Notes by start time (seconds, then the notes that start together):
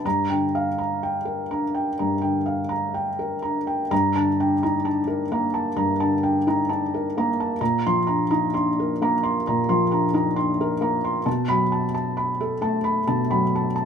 0.05 G2 A#5
0.30 D3 G5
0.55 F5
0.78 A#5
1.03 G5
1.25 A#4
1.51 D4 A#5
1.75 G5
1.99 G2 A#5
2.22 D3 G5
2.46 F5
2.69 A#5
2.94 G5
3.19 A#4
3.42 D4 A#5
3.67 G5
3.91 G2 A#5
4.15 D3 A5
4.40 D4 G5
4.63 D#4 A#5
4.85 D4 A5
5.07 A#4
5.32 A#3 A#5
5.54 A5
5.76 G2 A#5
6.00 D3 A5
6.23 D4 G5
6.47 D#4 A#5
6.69 D4 A5
6.94 A#4
7.17 A#3 A#5
7.40 A5
7.61 A#2 A#5
7.86 F3 C6
8.07 D4 A#5
8.31 D#4 A#5
8.54 D4 C6
8.80 A#4
9.02 A#3 A#5
9.23 C6
9.47 A#2 A#5
9.69 F3 C6
9.91 D4 A#5
10.13 D#4 A#5
10.36 D4 C6
10.61 A#4
10.81 A#3 A#5
11.04 C6
11.26 B2 A5
11.48 F#3 B5
11.72 A5
11.94 A5
12.17 B5
12.41 A4
12.61 A3 A5
12.84 B5
13.07 B2 A5
13.31 F#3 B5
13.55 A5
13.76 A5